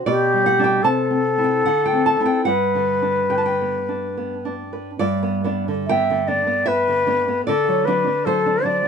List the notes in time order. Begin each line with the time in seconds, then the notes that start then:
0.06 B2 G4 D5
0.34 G3
0.46 F#5
0.58 G3 D4
0.64 G5
0.83 C3 A4 A5
1.11 C4
1.38 C4 E4
1.44 G5
1.66 D3 F#5
1.86 G5
1.93 C4
2.06 A5
2.20 C4 E4
2.26 G5
2.45 G2 B4 F#5
2.75 D3
3.02 D4
3.30 D3 G5
3.38 A5
3.46 G5
3.61 B3
3.89 D4
4.17 B3
4.45 D4
4.73 B4
4.99 G2 D5
5.23 B3
5.44 B3 D4
5.68 D3
5.87 B3 E5 G5
6.10 D3
6.28 B3 D4 D5
6.47 B3
6.66 B4 E5
6.88 D3
7.07 B3 D4
7.28 B3
7.46 D3 A4 D5
7.68 F#3
7.85 F#3 D4 B4
8.07 D4
8.25 F#3 A4 C5
8.46 D4
8.64 F#3 D4 D5